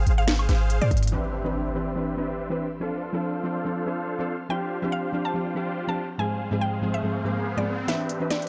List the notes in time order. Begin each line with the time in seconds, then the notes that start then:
Already playing: G5
0.06 G#1 G#4 C5 F5, closed hi-hat
0.18 F5
0.28 snare, closed hi-hat
0.39 high woodblock
0.49 G#1 G#4 C5 F5, snare, closed hi-hat
0.70 closed hi-hat
0.81 G#2 G#4 C5 D5 F5
0.91 kick, closed hi-hat
0.97 closed hi-hat
1.03 closed hi-hat
1.07 E3, closed hi-hat
1.12 C4 D4 G4 B4 C5 E5, impact
1.44 E3 C4 D4 G4 B4 C5 E5
1.74 E3 C4 D4 G4 B4 C5 E5
1.95 E3 C4 D4 B4
2.17 E3 C4 D4 G4 B4 C5 E5
2.50 E3 C4 D4 G4 B4 C5 E5
2.80 F3 C4 D4 F4 A4 C5 F5
3.13 F3 C4 D4 F4 A4 C5 F5
3.43 F3 C4 D4 F4 A4 C5 F5
3.65 F3 C4 D4 A4
3.86 F3 C4 D4 F4 A4 C5 F5
4.19 F3 C4 D4 F4 A4 C5 F5
4.49 F3 C4 D4 F4 G4 C5 F5 G5, riser
4.82 F3 C4 D4 F4 G4 C5 F5
4.92 F5
5.12 F3 C4 D4 F4 G4 C5 F5
5.25 A5
5.34 F3 C4 D4 G4
5.55 F3 C4 D4 F4 G4 C5 F5
5.87 F3 C4 D4 F4 G4 C5 F5 A5
6.18 G#2 F3 G#3 C4 G#4 C5 F5 G#5
6.51 G#2 F3 G#3 C4 G#4 C5 F5
6.61 G5
6.82 G#2 F3 G#3 C4 G#4 C5 F5
6.94 E5
7.03 G#2 F3 G#3 C4 G#4
7.24 G#2 F3 G#3 C4 G#4 C5 F5
7.56 G#2 F3 G#3 C4 G#4 C5 D5 F5
7.87 E3 C4 D4 G4 B4 C5 E5, snare, closed hi-hat, riser
8.09 closed hi-hat
8.20 E3 C4 D4 G4 B4 C5 E5
8.30 D5, snare, closed hi-hat
8.42 closed hi-hat